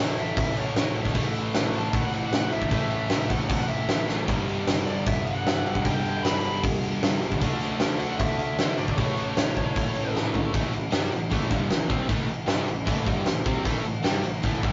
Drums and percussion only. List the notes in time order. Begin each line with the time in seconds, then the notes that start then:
0.18 crash
0.37 kick, crash
0.57 crash
0.76 snare, crash
0.95 crash
1.05 kick, snare
1.15 kick, crash
1.35 crash
1.54 snare, crash
1.74 crash
1.93 kick, crash
2.14 crash
2.32 snare, crash
2.52 crash
2.62 kick
2.71 kick, crash
2.91 crash
3.10 snare, crash
3.30 kick, crash
3.49 kick, crash
3.69 crash
3.89 snare, crash
4.08 snare
4.28 kick, crash
4.48 crash
4.67 snare, crash
4.87 crash
5.07 kick, crash
5.27 crash
5.46 snare, crash
5.66 crash
5.75 kick
5.85 kick, crash
6.05 crash
6.25 snare, crash
6.45 crash
6.64 kick, crash
6.83 crash
7.03 snare, crash
7.22 crash
7.32 kick
7.41 kick, crash
7.61 snare, crash
7.80 snare, crash
8.00 crash
8.19 kick, crash
8.39 crash
8.59 snare, crash
8.78 crash
8.88 kick
8.98 kick, crash
9.17 crash
9.37 snare, crash
9.57 kick, crash
9.76 kick, crash
9.95 crash
10.15 snare
10.34 floor tom
10.54 kick, crash
10.73 crash
10.92 snare, crash
11.12 crash
11.32 kick, crash
11.50 kick, crash
11.70 snare, crash
11.90 kick, crash
12.09 kick, crash
12.29 crash
12.48 snare, crash
12.68 crash
12.87 kick, crash
13.07 kick, crash
13.26 snare, crash
13.46 kick, crash
13.65 kick, crash
13.85 crash
14.04 snare, crash
14.24 crash
14.43 kick, crash
14.63 kick, crash